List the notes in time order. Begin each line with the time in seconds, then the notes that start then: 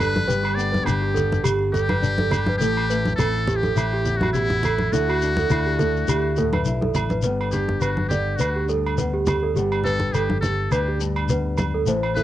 Already playing: G1 G2 D3 D4 G4
0.00 A4 B4, low conga, low agogo, shekere
0.16 high conga
0.28 G1 G2 G4 B4, shekere
0.43 G4, low agogo
0.55 B3 D5
0.59 shekere
0.72 B4, high conga, shekere
0.85 G1 D4 G4, low conga, low agogo, shekere
1.02 G4
1.14 D3 A4, low conga, shekere
1.32 high conga, shekere
1.43 G1 G4, muted nylon-string guitar stroke, low agogo, shekere
1.60 D4
1.73 G2 G4 A4, low conga, shekere
1.89 B4, high conga, low agogo
2.02 D4, shekere
2.18 A4, high conga
2.31 low conga, low agogo, shekere
2.46 B4, high conga
2.58 A1 A2 G4 A4, muted nylon-string guitar stroke, shekere
2.77 low agogo
2.90 A3 B4, shekere
3.05 high conga, shekere
3.16 A1 A4, low conga, low agogo, shekere
3.20 C4
3.47 G4, low conga, shekere
3.56 G4
3.63 A4, high conga, shekere
3.76 A1 E4, low agogo, shekere
3.93 G4
4.05 E2, low conga, shekere
4.17 F#4, high conga
4.22 F#4, low agogo
4.33 B2 E4 G4, shekere
4.50 high conga
4.63 A4, low conga, low agogo, shekere
4.78 high conga
4.92 D2 D3 E4 F#4 A4, shekere
5.08 F#4, low agogo
5.22 D4, shekere
5.37 A4, high conga, shekere
5.50 D2 E4, low conga, low agogo, shekere
5.66 G4
5.78 A3 A4, low conga, shekere
5.96 shekere
6.08 D2 E4 G4, low agogo, shekere
6.36 A2 A4, low conga, shekere
6.53 B4, high conga, low agogo
6.65 B1 E4, shekere
6.81 A4, high conga
6.95 A1, low conga, low agogo, shekere
7.10 B4, high conga, shekere
7.22 G1 G2 B3 B4, shekere
7.41 low agogo
7.52 D4 G4, low conga, shekere
7.69 high conga
7.81 G1 F#4 B4, low agogo, shekere
7.97 high conga
8.09 D3 G4 D5, low conga, shekere
8.36 D2 F#4 B4, shekere
8.41 muted nylon-string guitar stroke, low agogo
8.56 G4
8.68 G2 A4, shekere
8.86 low agogo
8.98 B3 B4, low conga, shekere
9.13 G4
9.26 G4, high conga, low conga, low agogo, shekere
9.43 A4
9.54 G1 G2 B3 G4, shekere
9.72 low agogo
9.84 G4 A4 B4, low conga, shekere
10.00 high conga
10.13 G1 G4 A4, low agogo, shekere
10.30 high conga
10.41 G4 A4, muted nylon-string guitar stroke, low conga, shekere
10.71 D2 D4 G4 B4, low agogo, shekere
10.88 G4
11.01 G2, shekere
11.16 low agogo
11.29 B3 B4, low conga, shekere
11.58 high conga, low conga, low agogo, shekere
11.74 A4
11.86 A1 A2 A3 C5, shekere
12.03 low agogo
12.15 E4 A4 B4, low conga, shekere